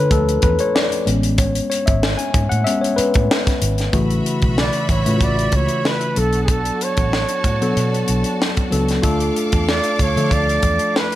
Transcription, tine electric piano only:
0.00 0.11 A3 soft
0.00 0.11 D4 medium
0.00 1.09 F4 medium
0.00 0.12 A4 medium
0.00 0.43 B4 medium
0.00 0.60 C#5 medium
0.10 0.39 F3 soft
0.10 0.40 A3 soft
0.10 0.40 D4 medium
0.10 0.41 A4 medium
0.43 0.61 B4 medium
0.60 0.74 C#5 loud
0.75 1.05 D5 loud
1.06 1.50 G#3 medium
1.06 1.50 B3 medium
1.06 1.50 C#4 medium
1.38 1.68 C#5 medium
1.70 1.78 C#5 medium
1.86 2.20 E5 medium
2.18 2.51 G#5 medium
2.49 2.64 F#5 loud
2.64 2.94 G#3 soft
2.64 2.94 B3 soft
2.64 2.95 C#4 medium
2.64 2.83 E5 medium
2.81 2.96 C#5 medium
2.96 3.57 B4 medium
3.92 4.95 C#3 medium
3.92 4.94 E3 medium
3.92 4.95 A3 medium
3.92 4.95 F#4 medium
5.05 6.17 C#3 medium
5.05 6.16 E3 medium
5.05 6.16 A3 medium
5.05 5.12 F4 medium
5.13 6.20 F#4 medium
6.16 7.32 F#3 medium
6.16 7.33 B3 medium
6.16 7.33 D4 medium
6.16 7.33 A4 medium
7.61 8.62 F#3 medium
7.61 8.62 B3 medium
7.61 8.62 D4 medium
7.61 8.62 A4 medium
8.71 9.00 F#3 medium
8.71 9.00 B3 medium
8.71 9.01 D4 medium
8.71 9.01 A4 medium
9.02 10.05 A3 medium
9.02 10.05 D4 medium
9.02 10.04 F4 medium
9.02 10.05 A4 loud
10.16 11.15 F3 medium
10.16 11.15 A3 medium
10.16 11.15 D4 medium
10.16 11.15 A4 medium

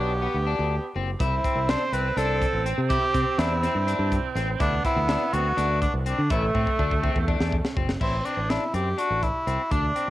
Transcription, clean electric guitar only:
0.00 0.12 D4 medium
0.22 0.36 B3 medium
0.47 0.74 D4 medium
0.96 1.09 C4 medium
1.20 1.34 E4 medium
1.44 1.58 C4 medium
1.69 1.82 D4 medium
1.93 2.07 C4 medium
2.17 2.45 D4 medium
2.66 2.80 C4 medium
2.90 3.04 E4 medium
3.14 3.28 C4 medium
3.39 3.53 D4 medium
3.63 3.77 C4 medium
3.87 4.15 D4 medium
4.36 4.50 C4 medium
4.60 4.74 E4 medium
4.84 4.98 C4 medium
5.08 5.22 D4 medium
5.33 5.47 C4 medium
5.57 5.85 D4 medium
6.06 6.20 C4 medium
6.31 6.45 E4 medium
6.55 6.69 C4 medium
6.79 6.93 D4 medium
7.03 7.17 C4 medium
7.28 7.56 D4 medium
7.77 7.91 C4 medium
8.01 8.15 E4 medium
8.25 8.39 C4 medium
8.50 8.64 D4 medium
8.74 8.88 C4 medium
8.98 9.26 D4 medium
9.47 9.61 C4 medium
9.71 9.85 D4 medium
9.96 10.10 C4 medium

